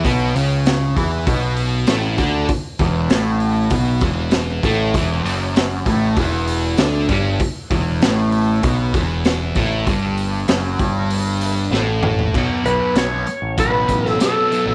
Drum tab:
CC |----------------|----------------|----------------|----------------|
HH |o-o-o-o-o-o-o-o-|o-o-o-o-o-o-o-o-|o-o-o-o-o-o-o-o-|o-o-o-o-o-o-o-o-|
SD |----o-------o---|----o-------o---|----o-------o---|----o-------o---|
T2 |----------------|----------------|----------------|----------------|
FT |----------------|----------------|----------------|----------------|
BD |o-----o-o-----o-|o-o-----o-o---o-|o-----o-o-----o-|o-o-----o-o---o-|

CC |----------------|x---------------|
HH |o-o-o-o-o-o-----|--x-x-x-x-x-x-x-|
SD |----o-------o---|----o------oo---|
T2 |--------------o-|----------------|
FT |---------------o|----------------|
BD |o-----o---------|o-------o-o-----|